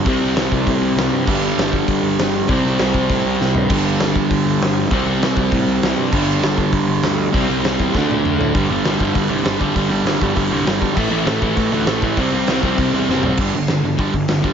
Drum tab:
CC |--------|x-------|--------|x-------|
HH |o-o-o-o-|--o-o-o-|o-o-o---|--o-o-o-|
SD |--o---o-|--o---o-|--o---o-|--o---o-|
T1 |--------|--------|--------|--------|
T2 |--------|--------|--------|--------|
FT |--------|--------|-------o|--------|
BD |o--oo---|o--oo---|o--oo---|o--oo---|

CC |--------|x-------|--------|--------|
HH |o-o-o-o-|--o-o-o-|o-o-----|o-o-o-o-|
SD |--o---o-|--o---o-|--o-o---|--o---o-|
T1 |--------|--------|-----o--|--------|
T2 |--------|--------|------o-|--------|
FT |--------|--------|-------o|--------|
BD |o--oo---|o--oo---|o--oo---|o--oo--o|

CC |--------|x-------|--------|x-------|
HH |o-o-o-o-|--o-o-o-|o-o-o---|--o-o-o-|
SD |--o---o-|--o---o-|--o---o-|--o---o-|
T1 |--------|--------|--------|--------|
T2 |--------|--------|--------|--------|
FT |--------|--------|-------o|--------|
BD |o--oo--o|o--oo--o|o--oo---|o---oo-o|